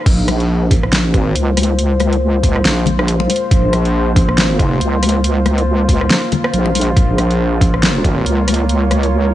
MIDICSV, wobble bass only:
0, 0, Header, 1, 2, 480
1, 0, Start_track
1, 0, Key_signature, -5, "minor"
1, 0, Tempo, 431655
1, 68, Time_signature, 4, 2, 24, 8
1, 10387, End_track
2, 0, Start_track
2, 0, Title_t, "Wobble bass"
2, 0, Program_c, 0, 39
2, 66, Note_on_c, 0, 34, 100
2, 1067, Note_off_c, 0, 34, 0
2, 1067, Note_on_c, 0, 33, 100
2, 1356, Note_off_c, 0, 33, 0
2, 1356, Note_on_c, 0, 32, 100
2, 1490, Note_off_c, 0, 32, 0
2, 1508, Note_on_c, 0, 37, 94
2, 2931, Note_off_c, 0, 37, 0
2, 2948, Note_on_c, 0, 34, 96
2, 3651, Note_off_c, 0, 34, 0
2, 3906, Note_on_c, 0, 34, 95
2, 5330, Note_off_c, 0, 34, 0
2, 5349, Note_on_c, 0, 37, 96
2, 6771, Note_off_c, 0, 37, 0
2, 7268, Note_on_c, 0, 34, 93
2, 7731, Note_off_c, 0, 34, 0
2, 7746, Note_on_c, 0, 34, 99
2, 9170, Note_off_c, 0, 34, 0
2, 9187, Note_on_c, 0, 37, 96
2, 10387, Note_off_c, 0, 37, 0
2, 10387, End_track
0, 0, End_of_file